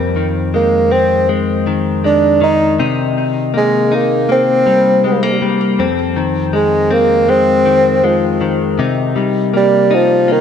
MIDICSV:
0, 0, Header, 1, 3, 480
1, 0, Start_track
1, 0, Tempo, 750000
1, 1782, Time_signature, 4, 2, 24, 8
1, 6660, End_track
2, 0, Start_track
2, 0, Title_t, "Bassoon"
2, 0, Program_c, 0, 70
2, 353, Note_on_c, 0, 58, 97
2, 592, Note_on_c, 0, 60, 117
2, 601, Note_off_c, 0, 58, 0
2, 827, Note_off_c, 0, 60, 0
2, 1312, Note_on_c, 0, 62, 92
2, 1531, Note_off_c, 0, 62, 0
2, 1555, Note_on_c, 0, 63, 109
2, 1773, Note_off_c, 0, 63, 0
2, 2285, Note_on_c, 0, 56, 89
2, 2527, Note_on_c, 0, 58, 95
2, 2536, Note_off_c, 0, 56, 0
2, 2755, Note_off_c, 0, 58, 0
2, 2762, Note_on_c, 0, 60, 117
2, 3447, Note_off_c, 0, 60, 0
2, 4190, Note_on_c, 0, 56, 92
2, 4433, Note_on_c, 0, 58, 110
2, 4442, Note_off_c, 0, 56, 0
2, 4671, Note_on_c, 0, 60, 127
2, 4681, Note_off_c, 0, 58, 0
2, 5153, Note_on_c, 0, 53, 95
2, 5162, Note_off_c, 0, 60, 0
2, 5508, Note_off_c, 0, 53, 0
2, 6121, Note_on_c, 0, 55, 97
2, 6366, Note_on_c, 0, 53, 97
2, 6375, Note_off_c, 0, 55, 0
2, 6608, Note_on_c, 0, 51, 105
2, 6617, Note_off_c, 0, 53, 0
2, 6660, Note_off_c, 0, 51, 0
2, 6660, End_track
3, 0, Start_track
3, 0, Title_t, "Clean electric guitar"
3, 0, Program_c, 1, 27
3, 0, Note_on_c, 1, 41, 96
3, 0, Note_on_c, 1, 60, 77
3, 103, Note_on_c, 1, 51, 66
3, 346, Note_on_c, 1, 56, 61
3, 583, Note_off_c, 1, 60, 0
3, 585, Note_on_c, 1, 60, 74
3, 817, Note_off_c, 1, 56, 0
3, 825, Note_on_c, 1, 56, 63
3, 1066, Note_off_c, 1, 51, 0
3, 1068, Note_on_c, 1, 51, 63
3, 1300, Note_off_c, 1, 56, 0
3, 1308, Note_on_c, 1, 56, 60
3, 1541, Note_off_c, 1, 51, 0
3, 1544, Note_on_c, 1, 51, 64
3, 1782, Note_off_c, 1, 41, 0
3, 1788, Note_off_c, 1, 60, 0
3, 1788, Note_on_c, 1, 48, 92
3, 1791, Note_on_c, 1, 63, 81
3, 1833, Note_off_c, 1, 56, 0
3, 2264, Note_on_c, 1, 58, 63
3, 2504, Note_off_c, 1, 63, 0
3, 2507, Note_on_c, 1, 63, 71
3, 2737, Note_off_c, 1, 58, 0
3, 2745, Note_on_c, 1, 58, 62
3, 2983, Note_off_c, 1, 51, 0
3, 2985, Note_on_c, 1, 55, 66
3, 3224, Note_off_c, 1, 58, 0
3, 3227, Note_on_c, 1, 56, 59
3, 3346, Note_off_c, 1, 56, 0
3, 3346, Note_on_c, 1, 58, 55
3, 3460, Note_off_c, 1, 55, 0
3, 3468, Note_on_c, 1, 55, 60
3, 3705, Note_off_c, 1, 48, 0
3, 3706, Note_on_c, 1, 41, 88
3, 3707, Note_off_c, 1, 63, 0
3, 3710, Note_on_c, 1, 60, 76
3, 3752, Note_off_c, 1, 58, 0
3, 3753, Note_off_c, 1, 55, 0
3, 3945, Note_on_c, 1, 51, 65
3, 4180, Note_on_c, 1, 56, 59
3, 4417, Note_off_c, 1, 60, 0
3, 4420, Note_on_c, 1, 60, 66
3, 4654, Note_off_c, 1, 56, 0
3, 4662, Note_on_c, 1, 56, 68
3, 4898, Note_off_c, 1, 51, 0
3, 4900, Note_on_c, 1, 51, 65
3, 5135, Note_off_c, 1, 56, 0
3, 5143, Note_on_c, 1, 56, 61
3, 5379, Note_off_c, 1, 51, 0
3, 5382, Note_on_c, 1, 51, 61
3, 5624, Note_off_c, 1, 41, 0
3, 5624, Note_on_c, 1, 48, 90
3, 5626, Note_off_c, 1, 60, 0
3, 5628, Note_on_c, 1, 63, 64
3, 5671, Note_off_c, 1, 56, 0
3, 5858, Note_off_c, 1, 51, 0
3, 5861, Note_on_c, 1, 55, 62
3, 6102, Note_on_c, 1, 58, 63
3, 6338, Note_off_c, 1, 63, 0
3, 6340, Note_on_c, 1, 63, 73
3, 6571, Note_off_c, 1, 58, 0
3, 6579, Note_on_c, 1, 58, 65
3, 6660, Note_off_c, 1, 48, 0
3, 6660, Note_off_c, 1, 55, 0
3, 6660, Note_off_c, 1, 58, 0
3, 6660, Note_off_c, 1, 63, 0
3, 6660, End_track
0, 0, End_of_file